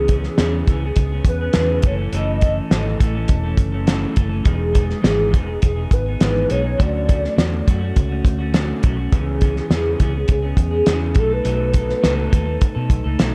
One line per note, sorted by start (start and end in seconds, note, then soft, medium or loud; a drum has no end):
0.00 0.26 C#2 medium
0.00 0.10 B3 medium
0.00 0.11 C#4 medium
0.00 0.11 G#4 medium
0.00 0.93 G#4 medium
0.08 0.38 E3 medium
0.08 0.39 B3 medium
0.08 0.40 C#4 medium
0.08 kick medium
0.08 closed hi-hat medium
0.13 0.40 G#4 medium
0.24 snare soft
0.38 0.62 E2 medium
0.38 0.67 C#3 medium
0.38 0.67 E3 medium
0.38 0.68 B3 medium
0.38 0.69 C#4 medium
0.38 0.69 G#4 medium
0.38 snare medium
0.38 closed hi-hat medium
0.67 0.91 C#2 medium
0.67 0.82 E3 medium
0.67 0.83 B3 medium
0.67 0.83 C#4 medium
0.67 0.82 G#4 medium
0.67 kick medium
0.67 closed hi-hat medium
0.84 1.13 B3 soft
0.84 1.13 C#4 soft
0.84 1.11 G#4 soft
0.96 1.20 C#2 medium
0.96 1.12 G#4 medium
0.96 kick medium
0.96 closed hi-hat medium
1.12 1.42 B3 soft
1.12 1.41 C#4 soft
1.12 1.40 G#4 soft
1.25 1.48 E2 medium
1.25 1.81 B4 loud
1.25 kick medium
1.25 closed hi-hat medium
1.41 1.56 B3 soft
1.41 1.56 C#4 soft
1.41 1.55 G#4 soft
1.53 1.78 E2 medium
1.53 1.84 C#3 medium
1.53 1.83 E3 medium
1.53 snare loud
1.53 closed hi-hat medium
1.57 1.85 B3 medium
1.57 1.85 C#4 medium
1.57 1.86 G#4 medium
1.82 2.07 F#1 medium
1.82 1.98 E3 medium
1.82 1.99 A3 medium
1.82 1.98 C#4 medium
1.82 1.98 C#5 medium
1.82 kick loud
1.82 closed hi-hat medium
1.87 1.97 A4 medium
1.99 2.12 E3 soft
1.99 2.13 A3 soft
1.99 2.13 C#4 soft
1.99 2.13 A4 soft
2.12 2.59 F#1 loud
2.12 2.42 F#2 medium
2.12 2.42 C#3 medium
2.12 2.41 E3 medium
2.12 2.42 A3 medium
2.12 2.43 C#4 medium
2.12 2.43 A4 medium
2.12 2.97 D#5 loud
2.12 closed hi-hat medium
2.41 2.71 E3 medium
2.41 2.71 A3 medium
2.41 2.72 C#4 medium
2.41 2.72 A4 medium
2.41 kick medium
2.41 closed hi-hat medium
2.71 2.94 G#1 medium
2.71 3.00 F#2 medium
2.71 3.00 C#3 medium
2.71 2.99 E3 medium
2.71 3.00 A3 medium
2.71 3.01 C#4 medium
2.71 3.01 A4 medium
2.71 snare loud
2.71 closed hi-hat medium
3.00 3.24 A1 medium
3.00 3.15 E3 medium
3.00 3.15 A3 medium
3.00 3.15 C#4 medium
3.00 3.14 A4 medium
3.00 kick medium
3.00 closed hi-hat medium
3.15 3.45 E3 soft
3.15 3.44 A3 soft
3.15 3.43 C#4 medium
3.15 3.42 A4 medium
3.28 3.53 E1 medium
3.28 kick medium
3.28 closed hi-hat medium
3.43 3.74 E3 soft
3.43 3.74 A3 soft
3.43 3.73 C#4 soft
3.43 3.71 A4 medium
3.57 4.05 F#1 medium
3.57 kick medium
3.57 closed hi-hat medium
3.72 3.87 E3 soft
3.72 3.87 A3 soft
3.72 3.88 C#4 medium
3.72 3.87 A4 soft
3.87 4.16 F#2 medium
3.87 4.17 C#3 medium
3.87 4.14 E3 medium
3.87 4.15 A3 medium
3.87 4.16 C#4 medium
3.87 4.17 A4 medium
3.87 snare medium
3.87 closed hi-hat medium
4.15 4.40 F#1 medium
4.15 4.31 E3 medium
4.15 4.31 A3 medium
4.15 4.30 C#4 medium
4.15 4.28 A4 medium
4.15 kick medium
4.15 closed hi-hat medium
4.29 4.42 E3 soft
4.29 4.45 A3 soft
4.29 4.45 C#4 soft
4.29 4.45 A4 soft
4.43 4.93 E1 loud
4.43 4.74 E3 medium
4.43 4.71 G#3 medium
4.43 4.73 B3 medium
4.43 4.74 D#4 medium
4.43 5.59 G#4 medium
4.43 4.75 G#4 medium
4.43 kick loud
4.43 closed hi-hat medium
4.73 5.01 G#3 medium
4.73 5.02 B3 medium
4.73 5.02 D#4 medium
4.73 5.03 G#4 medium
4.73 kick medium
4.73 closed hi-hat medium
4.90 snare soft
5.02 5.34 G#1 medium
5.02 5.32 E3 medium
5.02 5.31 G#3 medium
5.02 5.32 B3 medium
5.02 5.33 D#4 medium
5.02 5.33 G#4 medium
5.02 snare loud
5.02 closed hi-hat medium
5.32 5.57 E1 medium
5.32 5.47 G#3 medium
5.32 5.48 B3 medium
5.32 5.46 D#4 medium
5.32 5.45 G#4 medium
5.32 kick medium
5.32 closed hi-hat medium
5.46 5.78 B3 soft
5.46 5.77 D#4 soft
5.46 5.75 G#4 soft
5.62 5.86 E1 medium
5.62 5.95 G#4 medium
5.62 kick medium
5.62 closed hi-hat medium
5.76 6.07 B3 soft
5.76 6.07 D#4 soft
5.76 6.05 G#4 soft
5.91 6.15 G#1 medium
5.91 6.53 B4 medium
5.91 kick medium
5.91 closed hi-hat medium
6.06 6.21 B3 soft
6.06 6.22 D#4 soft
6.06 6.21 G#4 soft
6.21 6.44 G#1 medium
6.21 6.50 E3 medium
6.21 6.48 G#3 medium
6.21 6.49 B3 medium
6.21 6.50 D#4 medium
6.21 6.51 G#4 medium
6.21 snare medium
6.21 closed hi-hat medium
6.49 6.74 B1 medium
6.49 6.64 G#3 medium
6.49 6.64 B3 medium
6.49 6.63 D#4 medium
6.49 6.61 G#4 medium
6.49 6.82 C#5 loud
6.49 closed hi-hat medium
6.62 6.79 B3 soft
6.62 6.79 D#4 soft
6.62 6.78 G#4 soft
6.78 7.26 D2 loud
6.78 7.08 D3 medium
6.78 7.05 F#3 medium
6.78 7.06 A3 medium
6.78 7.07 C#4 medium
6.78 7.08 F#4 medium
6.78 7.67 D5 loud
6.78 kick loud
6.78 closed hi-hat medium
7.06 7.36 F#3 medium
7.06 7.37 A3 medium
7.06 7.38 C#4 medium
7.06 7.38 F#4 medium
7.06 kick medium
7.06 closed hi-hat medium
7.25 snare soft
7.36 7.61 E2 medium
7.36 7.66 D3 medium
7.36 7.65 F#3 medium
7.36 7.66 A3 medium
7.36 7.67 C#4 medium
7.36 7.67 F#4 medium
7.36 snare medium
7.36 closed hi-hat medium
7.66 7.91 F#2 medium
7.66 7.81 F#3 medium
7.66 7.81 A3 medium
7.66 7.81 C#4 medium
7.66 7.79 F#4 medium
7.66 kick medium
7.66 closed hi-hat medium
7.81 8.11 A3 soft
7.81 8.10 C#4 medium
7.81 8.08 F#4 medium
7.96 8.20 C#2 medium
7.96 kick medium
7.96 closed hi-hat medium
8.09 8.41 A3 soft
8.09 8.39 C#4 medium
8.09 8.37 F#4 medium
8.25 8.72 D2 medium
8.25 kick medium
8.25 closed hi-hat medium
8.39 8.53 A3 soft
8.39 8.54 C#4 soft
8.39 8.54 F#4 medium
8.53 8.82 D3 medium
8.53 8.81 F#3 medium
8.53 8.83 A3 medium
8.53 8.84 C#4 loud
8.53 8.84 F#4 medium
8.53 snare loud
8.53 closed hi-hat medium
8.82 9.07 B1 medium
8.82 8.97 F#3 medium
8.82 8.98 A3 medium
8.82 8.98 C#4 medium
8.82 8.96 F#4 medium
8.82 kick medium
8.82 closed hi-hat medium
8.97 9.13 A3 soft
8.97 9.12 C#4 soft
8.97 9.12 F#4 medium
9.12 9.59 C#2 loud
9.12 9.41 C#3 medium
9.12 9.39 E3 medium
9.12 9.40 B3 medium
9.12 9.42 C#4 medium
9.12 9.42 G#4 medium
9.12 10.27 G#4 medium
9.12 kick loud
9.12 closed hi-hat medium
9.40 9.70 E3 medium
9.40 9.71 B3 medium
9.40 9.71 C#4 medium
9.40 9.71 G#4 medium
9.40 kick medium
9.40 closed hi-hat medium
9.56 snare soft
9.70 9.94 E2 medium
9.70 10.00 C#3 medium
9.70 9.97 E3 medium
9.70 9.99 B3 medium
9.70 10.00 C#4 medium
9.70 10.01 G#4 medium
9.70 snare loud
9.70 closed hi-hat medium
9.99 10.23 C#2 medium
9.99 10.14 E3 medium
9.99 10.14 B3 medium
9.99 10.15 C#4 medium
9.99 10.12 G#4 medium
9.99 kick medium
9.99 closed hi-hat medium
10.14 10.44 B3 soft
10.14 10.43 C#4 soft
10.14 10.41 G#4 medium
10.28 10.52 C#2 medium
10.28 11.20 G#4 medium
10.28 kick medium
10.28 closed hi-hat medium
10.43 10.73 B3 soft
10.43 10.72 C#4 soft
10.43 10.70 G#4 medium
10.57 10.81 E2 medium
10.57 kick medium
10.57 closed hi-hat medium
10.71 10.87 B3 soft
10.71 10.87 C#4 soft
10.71 10.87 G#4 medium
10.86 11.18 E2 medium
10.86 11.16 C#3 medium
10.86 11.15 E3 medium
10.86 11.17 B3 medium
10.86 11.17 C#4 medium
10.86 11.17 G#4 medium
10.86 snare loud
10.86 closed hi-hat medium
11.15 11.40 B1 medium
11.15 11.31 F#3 medium
11.15 11.32 A3 medium
11.15 11.30 D#4 medium
11.15 kick loud
11.15 closed hi-hat medium
11.19 11.34 A4 medium
11.19 11.29 A4 medium
11.30 11.44 A3 soft
11.30 11.44 D#4 soft
11.30 11.45 A4 soft
11.30 13.21 B4 loud
11.44 11.92 B1 loud
11.44 11.74 B2 medium
11.44 11.71 F#3 medium
11.44 11.72 A3 medium
11.44 11.74 D#4 medium
11.44 11.75 A4 medium
11.44 closed hi-hat medium
11.72 12.01 F#3 soft
11.72 12.02 A3 medium
11.72 12.02 D#4 medium
11.72 12.03 A4 medium
11.72 kick medium
11.72 closed hi-hat medium
11.89 snare soft
12.02 12.27 C#2 medium
12.02 12.32 B2 medium
12.02 12.30 F#3 medium
12.02 12.31 A3 medium
12.02 12.32 D#4 loud
12.02 12.33 A4 loud
12.02 snare loud
12.02 closed hi-hat medium
12.31 12.56 D#2 medium
12.31 12.47 F#3 medium
12.31 12.47 A3 medium
12.31 12.46 D#4 medium
12.31 12.44 A4 medium
12.31 kick medium
12.31 closed hi-hat medium
12.45 12.77 A3 soft
12.45 12.75 D#4 soft
12.45 12.74 A4 medium
12.61 kick medium
12.61 closed hi-hat medium
12.75 12.88 B2 medium
12.75 13.07 A3 soft
12.75 13.05 D#4 medium
12.75 13.03 A4 medium
12.90 13.02 B1 medium
12.90 kick medium
12.90 closed hi-hat medium
13.04 13.17 C#2 medium
13.04 13.18 A3 soft
13.04 13.19 D#4 soft
13.04 13.19 A4 soft
13.18 13.35 B1 medium
13.18 13.35 B2 medium
13.18 13.35 F#3 medium
13.18 13.35 A3 medium
13.18 13.35 D#4 medium
13.18 13.35 A4 medium
13.18 snare loud
13.18 closed hi-hat medium